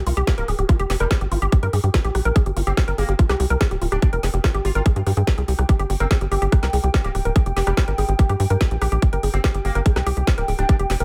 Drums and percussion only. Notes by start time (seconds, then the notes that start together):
0.07 open hi-hat
0.17 closed hi-hat
0.27 kick, snare, closed hi-hat
0.38 closed hi-hat
0.48 cross-stick, open hi-hat
0.59 closed hi-hat
0.69 kick, closed hi-hat
0.79 closed hi-hat
0.90 snare, open hi-hat
1.00 cross-stick, closed hi-hat
1.11 kick, snare, closed hi-hat
1.21 closed hi-hat
1.32 open hi-hat
1.42 closed hi-hat
1.52 kick, closed hi-hat
1.63 cross-stick, closed hi-hat
1.73 open hi-hat
1.84 closed hi-hat
1.94 kick, snare, closed hi-hat
2.04 closed hi-hat
2.15 cross-stick, open hi-hat
2.25 closed hi-hat
2.36 kick, closed hi-hat
2.46 closed hi-hat
2.57 open hi-hat
2.67 closed hi-hat
2.77 kick, cross-stick, snare, closed hi-hat
2.88 closed hi-hat
2.98 open hi-hat
3.09 closed hi-hat
3.19 kick, closed hi-hat
3.29 cross-stick, snare, closed hi-hat
3.40 open hi-hat
3.50 closed hi-hat
3.61 kick, snare, closed hi-hat
3.71 closed hi-hat
3.82 open hi-hat
3.92 cross-stick, closed hi-hat
4.02 kick, closed hi-hat
4.13 closed hi-hat
4.23 snare, open hi-hat
4.34 closed hi-hat
4.44 kick, cross-stick, snare, closed hi-hat
4.54 closed hi-hat
4.65 open hi-hat
4.75 closed hi-hat
4.86 kick, closed hi-hat
4.96 closed hi-hat
5.07 cross-stick, open hi-hat
5.17 closed hi-hat
5.27 kick, snare, closed hi-hat
5.38 closed hi-hat
5.48 open hi-hat
5.59 cross-stick, closed hi-hat
5.69 kick, closed hi-hat
5.79 closed hi-hat
5.90 open hi-hat
6.00 cross-stick, closed hi-hat
6.11 kick, snare, closed hi-hat
6.21 closed hi-hat
6.32 open hi-hat
6.42 closed hi-hat
6.52 kick, cross-stick, closed hi-hat
6.63 snare, closed hi-hat
6.73 open hi-hat
6.84 closed hi-hat
6.94 kick, snare, closed hi-hat
7.04 closed hi-hat
7.15 cross-stick, open hi-hat
7.25 closed hi-hat
7.36 kick, closed hi-hat
7.46 closed hi-hat
7.57 snare, open hi-hat
7.67 cross-stick, closed hi-hat
7.77 kick, snare, closed hi-hat
7.88 closed hi-hat
7.98 open hi-hat
8.09 closed hi-hat
8.19 kick, closed hi-hat
8.29 cross-stick, closed hi-hat
8.40 open hi-hat
8.50 closed hi-hat
8.61 kick, snare, closed hi-hat
8.71 closed hi-hat
8.82 cross-stick, open hi-hat
8.92 closed hi-hat
9.02 kick, closed hi-hat
9.13 closed hi-hat
9.23 open hi-hat
9.34 closed hi-hat
9.44 kick, cross-stick, snare, closed hi-hat
9.54 closed hi-hat
9.65 open hi-hat
9.75 closed hi-hat
9.86 kick, closed hi-hat
9.96 cross-stick, snare, closed hi-hat
10.07 open hi-hat
10.17 closed hi-hat
10.27 kick, snare, closed hi-hat
10.38 closed hi-hat
10.48 open hi-hat
10.59 cross-stick, closed hi-hat
10.69 kick, closed hi-hat
10.79 closed hi-hat
10.90 snare, open hi-hat
11.00 closed hi-hat